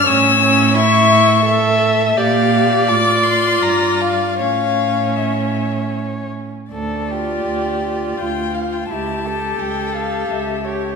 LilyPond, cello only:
\new Staff \with { instrumentName = "Cello" } { \clef bass \time 3/4 \key d \minor \tempo 4 = 84 a,2. | bes,4 a,4 g,4 | a,2~ a,8 r8 | d,4 d,4 d,4 |
cis,4 cis,4 cis,4 | }